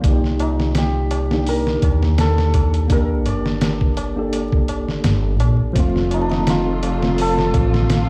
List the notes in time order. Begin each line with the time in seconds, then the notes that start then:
Already playing: F4
0.02 C2 A#3 D5, kick, closed hi-hat, tabla na
0.06 D#4 G4
0.24 snare, tabla na
0.39 D#4, closed hi-hat, tabla na
0.60 snare, tabla na
0.75 G4, snare, closed hi-hat, tabla na
0.96 tabla na
1.11 closed hi-hat, tabla na
1.31 A#3 D4 D#4 G4, snare, tabla na
1.47 A#4, open hi-hat, tabla na
1.67 snare, tabla na
1.82 D#2, kick, closed hi-hat, tabla na
2.03 snare, tabla na
2.18 A4, snare, closed hi-hat, tabla na
2.38 snare, tabla na
2.54 kick, closed hi-hat, tabla na
2.74 closed hi-hat, tabla na
2.88 A#3 D4, kick, closed hi-hat, tabla na
2.92 G4 A#4
3.09 tabla na
3.26 G1 D5, closed hi-hat, tabla na, tabla ge
3.45 snare, tabla na
3.61 snare, closed hi-hat, tabla na
3.81 kick, tabla na
3.97 closed hi-hat, tabla na
4.16 A#3 D4 G4 A4, tabla na
4.33 closed hi-hat, tabla na
4.52 kick, tabla na
4.68 closed hi-hat, tabla na
4.88 snare, tabla na
5.04 G1, snare, closed hi-hat, tabla na
5.24 tabla na
5.40 A#1, closed hi-hat, tabla na
5.59 tabla na
5.73 F1 C3 F3 A3 F4, kick, closed hi-hat, tabla na
5.78 C4 F4
5.95 snare, tabla na
6.11 D#4, closed hi-hat, tabla na
6.21 D4
6.29 D#4, snare, tabla na
6.47 F4, snare, closed hi-hat, tabla na
6.68 tabla na
6.83 closed hi-hat, tabla na
7.02 F3 A3 C4 F4, snare, tabla na
7.18 A4, open hi-hat, tabla na
7.38 snare, tabla na
7.54 A1, kick, closed hi-hat, tabla na
7.74 snare, tabla na
7.90 snare, closed hi-hat, tabla na